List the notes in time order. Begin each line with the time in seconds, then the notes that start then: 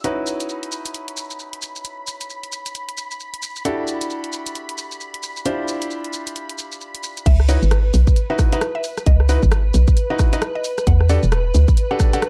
0.04 C#4 D#4 E4 F#4 B4 B5, closed hi-hat, shaker
0.27 shaker
0.40 closed hi-hat, shaker
0.49 shaker
0.63 closed hi-hat
0.72 shaker
0.86 closed hi-hat, shaker
0.94 closed hi-hat, shaker
1.08 closed hi-hat
1.17 shaker
1.31 shaker
1.40 shaker
1.53 closed hi-hat
1.62 shaker
1.76 shaker
1.85 closed hi-hat, shaker
2.07 shaker
2.21 closed hi-hat, shaker
2.30 shaker
2.43 closed hi-hat
2.52 shaker
2.66 closed hi-hat, shaker
2.75 closed hi-hat, shaker
2.89 closed hi-hat
2.98 shaker
3.11 shaker
3.20 shaker
3.34 closed hi-hat
3.43 shaker
3.56 shaker
3.65 D4 E4 F#4 G4 A4, closed hi-hat, shaker
3.88 shaker
4.01 closed hi-hat, shaker
4.10 shaker
4.24 closed hi-hat
4.33 shaker
4.46 closed hi-hat, shaker
4.55 closed hi-hat, shaker
4.69 closed hi-hat
4.78 shaker
4.92 shaker
5.01 shaker
5.14 closed hi-hat
5.23 shaker
5.37 shaker
5.46 D4 E4 F4 G4 C5, closed hi-hat, shaker
5.68 shaker
5.82 closed hi-hat, shaker
5.91 shaker
6.04 closed hi-hat
6.13 shaker
6.27 closed hi-hat, shaker
6.36 closed hi-hat, shaker
6.49 closed hi-hat
6.58 shaker
6.72 shaker
6.81 shaker
6.95 closed hi-hat
7.03 shaker
7.17 closed hi-hat, shaker
7.26 C#2 B4 E5, kick, closed hi-hat, crash, shaker
7.40 cross-stick
7.49 D#4 E4 F#4 B4 C#5, open hi-hat, shaker
7.62 G#1, shaker
7.71 cross-stick, closed hi-hat, shaker
7.94 B1, open hi-hat, shaker
8.07 kick, shaker
8.16 closed hi-hat, shaker
8.30 D#4 E4 F#4 B4 E5
8.39 kick, cross-stick, open hi-hat, shaker
8.52 D#4 E4 F#4 B4 E5, closed hi-hat, shaker
8.61 cross-stick, closed hi-hat, shaker
8.75 E5
8.84 open hi-hat, shaker
8.98 cross-stick, closed hi-hat, shaker
9.06 C#2 D#5, kick, closed hi-hat, shaker
9.20 cross-stick
9.29 D#4 E4 F#4 B4, open hi-hat, shaker
9.43 G#1, kick, shaker
9.52 cross-stick, closed hi-hat, shaker
9.74 B1, open hi-hat, shaker
9.88 kick, shaker
9.97 closed hi-hat, shaker
10.10 D#4 E4 F#4 B4 D#5
10.19 kick, cross-stick, open hi-hat, shaker
10.33 D#4 E4 F#4 B4 D#5, closed hi-hat, shaker
10.42 cross-stick, closed hi-hat, shaker
10.55 D#5
10.64 open hi-hat, shaker
10.78 cross-stick, closed hi-hat, shaker
10.87 E2 F#5, kick, closed hi-hat, shaker
11.01 cross-stick
11.09 D4 F#4 G4 A4 D5, open hi-hat, shaker
11.23 E1, shaker
11.32 cross-stick, closed hi-hat, shaker
11.54 D2, open hi-hat, shaker
11.68 kick, shaker
11.77 closed hi-hat, shaker
11.91 D4 F#4 G4 A4 F#5
12.00 kick, cross-stick, open hi-hat, shaker
12.13 D4 F#4 G4 A4 F#5, closed hi-hat, shaker
12.22 cross-stick, closed hi-hat, shaker